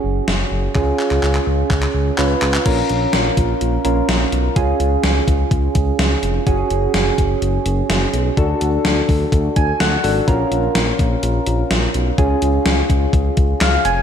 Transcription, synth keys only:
0, 0, Header, 1, 2, 480
1, 0, Start_track
1, 0, Tempo, 476190
1, 759, Time_signature, 4, 2, 24, 8
1, 14136, End_track
2, 0, Start_track
2, 0, Title_t, "Synth keys"
2, 0, Program_c, 0, 88
2, 0, Note_on_c, 0, 61, 70
2, 0, Note_on_c, 0, 66, 66
2, 0, Note_on_c, 0, 68, 76
2, 720, Note_off_c, 0, 61, 0
2, 720, Note_off_c, 0, 66, 0
2, 720, Note_off_c, 0, 68, 0
2, 760, Note_on_c, 0, 68, 78
2, 761, Note_on_c, 0, 61, 72
2, 761, Note_on_c, 0, 65, 65
2, 2171, Note_off_c, 0, 61, 0
2, 2171, Note_off_c, 0, 65, 0
2, 2171, Note_off_c, 0, 68, 0
2, 2199, Note_on_c, 0, 65, 51
2, 2200, Note_on_c, 0, 61, 56
2, 2200, Note_on_c, 0, 71, 61
2, 2669, Note_off_c, 0, 61, 0
2, 2669, Note_off_c, 0, 65, 0
2, 2680, Note_off_c, 0, 71, 0
2, 2680, Note_on_c, 0, 70, 80
2, 2681, Note_on_c, 0, 61, 72
2, 2681, Note_on_c, 0, 65, 68
2, 3856, Note_off_c, 0, 61, 0
2, 3856, Note_off_c, 0, 65, 0
2, 3856, Note_off_c, 0, 70, 0
2, 3877, Note_on_c, 0, 61, 57
2, 3877, Note_on_c, 0, 65, 53
2, 3877, Note_on_c, 0, 70, 62
2, 4586, Note_off_c, 0, 61, 0
2, 4586, Note_off_c, 0, 65, 0
2, 4598, Note_off_c, 0, 70, 0
2, 4598, Note_on_c, 0, 61, 74
2, 4598, Note_on_c, 0, 65, 69
2, 4598, Note_on_c, 0, 68, 81
2, 6480, Note_off_c, 0, 61, 0
2, 6480, Note_off_c, 0, 65, 0
2, 6480, Note_off_c, 0, 68, 0
2, 6519, Note_on_c, 0, 61, 73
2, 6519, Note_on_c, 0, 66, 70
2, 6519, Note_on_c, 0, 68, 82
2, 8401, Note_off_c, 0, 61, 0
2, 8401, Note_off_c, 0, 66, 0
2, 8401, Note_off_c, 0, 68, 0
2, 8441, Note_on_c, 0, 62, 77
2, 8441, Note_on_c, 0, 66, 69
2, 8441, Note_on_c, 0, 69, 85
2, 9639, Note_on_c, 0, 80, 73
2, 9863, Note_off_c, 0, 80, 0
2, 9880, Note_on_c, 0, 78, 75
2, 10086, Note_off_c, 0, 62, 0
2, 10087, Note_off_c, 0, 66, 0
2, 10087, Note_off_c, 0, 69, 0
2, 10118, Note_on_c, 0, 66, 53
2, 10119, Note_on_c, 0, 62, 61
2, 10119, Note_on_c, 0, 69, 66
2, 10326, Note_off_c, 0, 78, 0
2, 10358, Note_on_c, 0, 65, 68
2, 10359, Note_off_c, 0, 62, 0
2, 10359, Note_off_c, 0, 66, 0
2, 10359, Note_off_c, 0, 69, 0
2, 10359, Note_on_c, 0, 61, 76
2, 10359, Note_on_c, 0, 70, 84
2, 12240, Note_off_c, 0, 65, 0
2, 12241, Note_off_c, 0, 61, 0
2, 12241, Note_off_c, 0, 70, 0
2, 12280, Note_on_c, 0, 61, 77
2, 12280, Note_on_c, 0, 65, 68
2, 12281, Note_on_c, 0, 68, 82
2, 13721, Note_on_c, 0, 77, 78
2, 13943, Note_off_c, 0, 77, 0
2, 13961, Note_on_c, 0, 80, 78
2, 14136, Note_off_c, 0, 61, 0
2, 14136, Note_off_c, 0, 65, 0
2, 14136, Note_off_c, 0, 68, 0
2, 14136, Note_off_c, 0, 80, 0
2, 14136, End_track
0, 0, End_of_file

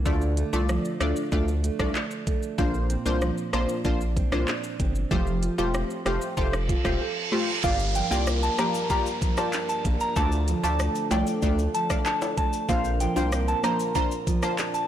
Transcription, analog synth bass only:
0, 0, Header, 1, 2, 480
1, 0, Start_track
1, 0, Tempo, 631579
1, 45, Time_signature, 4, 2, 24, 8
1, 11306, End_track
2, 0, Start_track
2, 0, Title_t, "Analog synth bass"
2, 0, Program_c, 0, 38
2, 44, Note_on_c, 0, 38, 109
2, 332, Note_off_c, 0, 38, 0
2, 404, Note_on_c, 0, 36, 87
2, 596, Note_off_c, 0, 36, 0
2, 764, Note_on_c, 0, 38, 91
2, 860, Note_off_c, 0, 38, 0
2, 1005, Note_on_c, 0, 38, 102
2, 1292, Note_off_c, 0, 38, 0
2, 1366, Note_on_c, 0, 36, 91
2, 1461, Note_off_c, 0, 36, 0
2, 1965, Note_on_c, 0, 34, 101
2, 2252, Note_off_c, 0, 34, 0
2, 2325, Note_on_c, 0, 36, 91
2, 2516, Note_off_c, 0, 36, 0
2, 2685, Note_on_c, 0, 34, 95
2, 2781, Note_off_c, 0, 34, 0
2, 2925, Note_on_c, 0, 34, 111
2, 3212, Note_off_c, 0, 34, 0
2, 3285, Note_on_c, 0, 36, 85
2, 3381, Note_off_c, 0, 36, 0
2, 3646, Note_on_c, 0, 31, 91
2, 3837, Note_off_c, 0, 31, 0
2, 3885, Note_on_c, 0, 29, 108
2, 4172, Note_off_c, 0, 29, 0
2, 4245, Note_on_c, 0, 28, 83
2, 4436, Note_off_c, 0, 28, 0
2, 4604, Note_on_c, 0, 29, 94
2, 4700, Note_off_c, 0, 29, 0
2, 4845, Note_on_c, 0, 29, 99
2, 5132, Note_off_c, 0, 29, 0
2, 5206, Note_on_c, 0, 28, 89
2, 5301, Note_off_c, 0, 28, 0
2, 5805, Note_on_c, 0, 31, 98
2, 6092, Note_off_c, 0, 31, 0
2, 6165, Note_on_c, 0, 36, 93
2, 6452, Note_off_c, 0, 36, 0
2, 7486, Note_on_c, 0, 34, 95
2, 7581, Note_off_c, 0, 34, 0
2, 7725, Note_on_c, 0, 38, 108
2, 8012, Note_off_c, 0, 38, 0
2, 8085, Note_on_c, 0, 38, 93
2, 8276, Note_off_c, 0, 38, 0
2, 8444, Note_on_c, 0, 36, 87
2, 8540, Note_off_c, 0, 36, 0
2, 8685, Note_on_c, 0, 38, 103
2, 8876, Note_off_c, 0, 38, 0
2, 9645, Note_on_c, 0, 34, 111
2, 9932, Note_off_c, 0, 34, 0
2, 10005, Note_on_c, 0, 36, 96
2, 10292, Note_off_c, 0, 36, 0
2, 11306, End_track
0, 0, End_of_file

